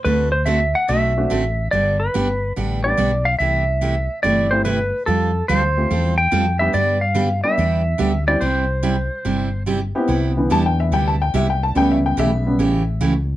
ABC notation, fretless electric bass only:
X:1
M:4/4
L:1/8
Q:"Swing" 1/4=144
K:C
V:1 name="Fretless electric bass" clef=bass
D,,4 B,,,2 A,,,2 | G,,,2 G,,,2 A,,,2 B,,,2 | C,,4 G,,,4 | F,,2 D,,2 E,,2 F,,2 |
G,,4 E,,2 D,,2 | C,,4 G,,,4 | C,,2 E,,2 D,,2 C,,2 | ^C,,2 B,,,2 A,,,2 C,,2 |]